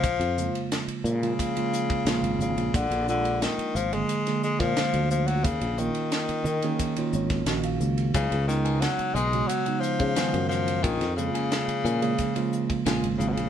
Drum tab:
RD |xx-xxx-xxx-xxx-x|xx-xxx-xxx-xxx-x|xx-xxx-xxx-xxx-x|xx-xxx-xxx-xxx-x|
HH |p-p-p-p-p-p-p-p-|p-p-p-p-p-p-p-p-|p-p-p-p-p-p-p-p-|p-p-p-p-p-p-p-p-|
SD |----o-------o---|----o----o-oo---|----o------oo---|--o-o-------o-o-|
BD |o-------o--o----|o----------o----|o-------o--o----|o----------o----|

RD |xx-xxx-xxx-xxx-x|
HH |p-p-p-p-p-p-p-p-|
SD |-o--o-------o---|
BD |o-------o--o----|